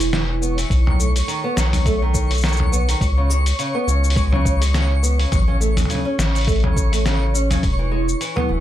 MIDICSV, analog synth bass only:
0, 0, Header, 1, 2, 480
1, 0, Start_track
1, 0, Key_signature, 4, "major"
1, 0, Tempo, 576923
1, 588, Time_signature, 4, 2, 24, 8
1, 7157, End_track
2, 0, Start_track
2, 0, Title_t, "Analog synth bass"
2, 0, Program_c, 0, 38
2, 0, Note_on_c, 0, 28, 93
2, 537, Note_off_c, 0, 28, 0
2, 584, Note_on_c, 0, 35, 92
2, 1015, Note_off_c, 0, 35, 0
2, 1305, Note_on_c, 0, 35, 86
2, 2456, Note_off_c, 0, 35, 0
2, 2505, Note_on_c, 0, 37, 91
2, 2936, Note_off_c, 0, 37, 0
2, 3224, Note_on_c, 0, 37, 93
2, 4375, Note_off_c, 0, 37, 0
2, 4427, Note_on_c, 0, 33, 97
2, 4857, Note_off_c, 0, 33, 0
2, 5146, Note_on_c, 0, 33, 89
2, 6296, Note_off_c, 0, 33, 0
2, 6348, Note_on_c, 0, 28, 97
2, 6778, Note_off_c, 0, 28, 0
2, 7071, Note_on_c, 0, 28, 98
2, 7157, Note_off_c, 0, 28, 0
2, 7157, End_track
0, 0, End_of_file